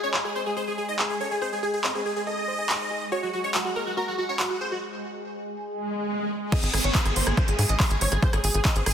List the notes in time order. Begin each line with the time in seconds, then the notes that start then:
Already playing: G#3 G#4
0.03 C#5
0.14 G#4, clap
0.25 G#4
0.35 C5
0.46 G#4
0.57 G#4 C5
0.67 G#4
0.78 G#4
0.88 G#4 D#5
0.99 G#4, clap
1.10 G#4
1.20 A4 C#5
1.31 G#4
1.42 G#4 C5
1.52 G#4
1.63 G#4
1.74 G#4
1.84 C4 A4 D#5, clap
1.95 C4 G#4 G#5
2.05 G#4
2.16 G#4
2.27 A4 D#5
2.48 C5
2.59 G#5
2.69 clap
2.91 G#4
3.12 F#4 C#5
3.23 F#4
3.33 F#4
3.44 C#5
3.54 F#4, clap
3.65 F#4
3.76 A#4
3.86 F#4
3.97 F#4 A#4
4.08 F#4
4.18 F#4
4.29 F#4 C#5
4.40 F#4, clap
4.50 F#4
4.61 G#4 C5
4.72 F#4
5.67 swell
6.52 G#4 D#5, kick, cross-stick, closed hi-hat, crash, downlifter
6.63 G#1 G#4, closed hi-hat
6.74 G#1 G#4, cross-stick, open hi-hat
6.84 G#1 C#5, closed hi-hat
6.95 G4 G#4, kick, clap, closed hi-hat
7.05 G#1 G#4, cross-stick, closed hi-hat
7.16 G#1 C5, open hi-hat
7.27 G#1 G#4 C5, cross-stick, closed hi-hat
7.37 G#4 C5, kick, closed hi-hat
7.48 G#1 G#4, closed hi-hat
7.59 G#2 G#4, cross-stick, open hi-hat
7.69 A1 D#5 G#5, closed hi-hat
7.80 G#4, kick, cross-stick, clap, open hi-hat
7.91 G#1 G#4, closed hi-hat
8.01 G#1 C5 C#5, open hi-hat
8.12 G#1 G#4, cross-stick, closed hi-hat
8.22 G#4 C5, kick, closed hi-hat
8.33 G#1 G#4, cross-stick, closed hi-hat
8.44 G#1 G#4, open hi-hat
8.54 G#1 G#4, closed hi-hat
8.65 C4 D#5, kick, cross-stick, clap, closed hi-hat
8.76 G#1 C4 G#4, closed hi-hat
8.86 G#1 G#4 C5, cross-stick, open hi-hat